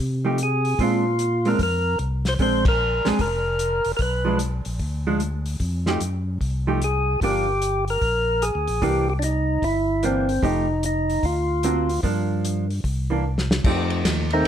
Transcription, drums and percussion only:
0.38 closed hi-hat
0.65 open hi-hat
0.79 kick, open hi-hat
1.19 closed hi-hat
1.45 open hi-hat
1.59 kick, open hi-hat
1.99 closed hi-hat
2.25 snare, open hi-hat
2.39 kick, open hi-hat
2.65 kick, ride
3.05 snare, open hi-hat
3.19 kick, open hi-hat
3.59 closed hi-hat
3.85 open hi-hat
3.99 kick, open hi-hat
4.39 closed hi-hat
4.65 open hi-hat
4.79 kick, open hi-hat
5.20 closed hi-hat
5.46 open hi-hat
5.60 kick, open hi-hat
5.86 snare
6.01 closed hi-hat
6.41 kick, open hi-hat
6.82 closed hi-hat
7.21 kick, open hi-hat
7.62 closed hi-hat
7.88 open hi-hat
8.02 kick, open hi-hat
8.42 closed hi-hat
8.68 open hi-hat
8.82 kick, open hi-hat
9.22 closed hi-hat
9.62 kick, open hi-hat
10.03 closed hi-hat
10.29 open hi-hat
10.43 kick, open hi-hat
10.83 closed hi-hat
11.10 open hi-hat
11.23 kick, open hi-hat
11.63 closed hi-hat
11.89 open hi-hat
12.03 kick, open hi-hat
12.45 closed hi-hat
12.70 open hi-hat
12.84 kick, open hi-hat
13.38 snare
13.51 snare
13.64 kick, crash
13.90 ride
14.05 kick, snare, hi-hat pedal, ride
14.30 ride

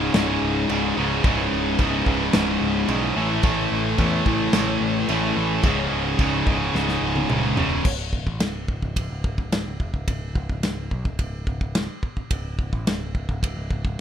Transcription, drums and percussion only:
0.14 snare, china
0.69 china
1.24 kick, china
1.79 kick, china
2.06 kick
2.33 snare, china
2.88 china
3.43 kick, china
3.98 kick, china
4.26 kick
4.53 snare, china
5.09 china
5.63 kick, china
6.19 kick, china
6.47 kick
6.75 snare
6.88 snare
7.16 high tom
7.30 mid tom
7.57 floor tom
7.70 floor tom
7.85 kick, crash
8.13 kick
8.27 kick
8.40 snare, ride bell
8.68 kick
8.82 kick
8.96 kick, ride bell
9.24 kick
9.38 kick
9.52 snare, ride bell
9.80 kick
9.94 kick
10.08 kick, ride bell
10.35 kick
10.49 kick
10.63 snare, ride bell
10.91 kick
11.05 kick
11.19 kick, ride bell
11.47 kick
11.61 kick
11.75 snare, ride bell
12.03 kick
12.17 kick
12.31 kick, ride bell
12.59 kick
12.73 kick
12.87 snare, ride bell
13.15 kick
13.29 kick
13.43 kick, ride bell
13.71 kick
13.85 kick

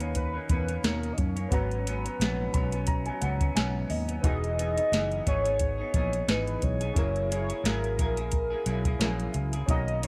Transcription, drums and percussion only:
0.00 closed hi-hat
0.15 kick, closed hi-hat
0.49 kick, closed hi-hat
0.68 closed hi-hat
0.84 snare, closed hi-hat
1.03 closed hi-hat
1.18 kick, closed hi-hat
1.37 closed hi-hat
1.52 kick, closed hi-hat
1.71 closed hi-hat
1.87 closed hi-hat
2.06 closed hi-hat
2.21 snare, closed hi-hat
2.54 kick, closed hi-hat
2.72 closed hi-hat
2.87 kick, closed hi-hat
3.06 closed hi-hat
3.22 closed hi-hat
3.41 kick, closed hi-hat
3.57 snare, closed hi-hat
3.90 open hi-hat
4.09 closed hi-hat
4.24 kick, closed hi-hat
4.44 closed hi-hat
4.59 closed hi-hat
4.78 closed hi-hat
4.93 snare, closed hi-hat
5.12 closed hi-hat
5.27 kick, closed hi-hat
5.46 closed hi-hat
5.59 kick, closed hi-hat
5.94 kick, closed hi-hat
6.13 closed hi-hat
6.28 snare, closed hi-hat
6.47 closed hi-hat
6.62 kick, closed hi-hat
6.81 closed hi-hat
6.96 kick, closed hi-hat
7.16 closed hi-hat
7.32 closed hi-hat
7.50 closed hi-hat
7.65 snare, closed hi-hat
7.84 closed hi-hat
7.99 kick, closed hi-hat
8.17 closed hi-hat
8.32 kick, closed hi-hat
8.66 closed hi-hat
8.85 kick, closed hi-hat
9.01 snare, closed hi-hat
9.20 closed hi-hat
9.34 closed hi-hat
9.53 closed hi-hat
9.68 kick, closed hi-hat
9.88 closed hi-hat
10.03 closed hi-hat

